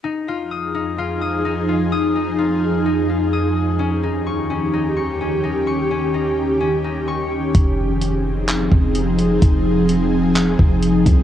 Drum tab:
HH |--------|--------|--------|--------|
CP |--------|--------|--------|--------|
BD |--------|--------|--------|--------|

HH |x-x-x-xx|x-x-x-xx|
CP |----x---|----x---|
BD |o----o--|o----o-o|